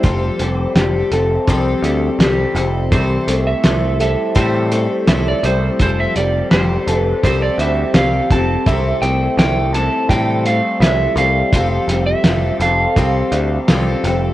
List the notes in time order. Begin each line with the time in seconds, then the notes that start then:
Already playing: A3 A4 C5
0.03 F1 F3 G3 C4 G4 A4, kick, closed hi-hat
0.39 F1 G3 C4 G4 A4, closed hi-hat
0.75 F1 G3 C4 G4 A4, snare, closed hi-hat
1.11 F1 C4 G4 A4, closed hi-hat
1.47 C2 F3 G3 C4 G4 A4, kick, closed hi-hat
1.82 D2 G3 G4 A4, closed hi-hat
1.87 C4
2.19 C2 G3 C4 G4 A4, snare, closed hi-hat
2.55 F1 C4 G4 A4, closed hi-hat
2.92 C2 C3 E3 G3 C4 E4 A4 C5, kick, closed hi-hat
3.27 C2 G3 A3 C4 E4 A4, closed hi-hat
3.47 E5
3.64 C2 G3 C4 E4 A4, snare, closed hi-hat
4.00 G3 C4 E4 A4 E5, closed hi-hat
4.35 A2 C3 E3 G3 C4 E4 A4 C5, kick, closed hi-hat
4.71 G3 A3 C4 E4 A4, closed hi-hat
5.07 C2 G3 C4 E4 A4 E5, snare, closed hi-hat
5.28 D5
5.43 C2 C4 E4 A4 C5, closed hi-hat
5.47 G3
5.79 F1 F3 G3 C4 G4 A4 C5, kick, closed hi-hat
6.00 E5
6.16 F1 G3 C4 G4 A4 D5, closed hi-hat
6.51 F1 G3 C4 G4 A4 C5, snare, closed hi-hat
6.87 F1 C4 G4 A4, closed hi-hat
6.98 B4
7.23 C2 F3 G3 C4 G4 A4 C5, kick, closed hi-hat
7.42 D5
7.58 D2 G3 A4 E5, closed hi-hat
7.63 C4 G4
7.94 C2 G3 C4 G4 F5, snare, closed hi-hat
7.98 A4
8.30 F1 C4 G4 A4 A5, kick, closed hi-hat
8.66 C2 C3 E3 G3 C4 E4 A4 E5, kick, closed hi-hat
9.02 C2 G3 A3 C4 E4 A4 G5, closed hi-hat
9.37 C2 G3 C4 E4 A4 G5, snare, closed hi-hat
9.74 G3 C4 E4 A4 A5, closed hi-hat
10.09 A2 C3 E3 G3 C4 E4 A4 G5, kick, closed hi-hat
10.45 G3 A3 C4 A4 F5, closed hi-hat
10.80 C2 G3 C4 E4 A4 E5, snare, closed hi-hat
11.16 C2 G3 C4 A4 F5, closed hi-hat
11.53 F1 F3 G3 C4 G4 A4, kick, closed hi-hat
11.88 F1 G3 C4 G4 A4, closed hi-hat
12.07 E5
12.24 F1 G3 C4 F4 G4 A4, snare, closed hi-hat
12.60 F1 G4 A4 F5, closed hi-hat
12.64 C4
12.96 C2 F3 G3 C4 G4 A4, kick, closed hi-hat
13.32 D2 G3 G4 A4, closed hi-hat
13.36 C4
13.68 C2 G3 C4 F4 G4 A4, snare, closed hi-hat
14.04 F1 G4 A4, closed hi-hat
14.08 C4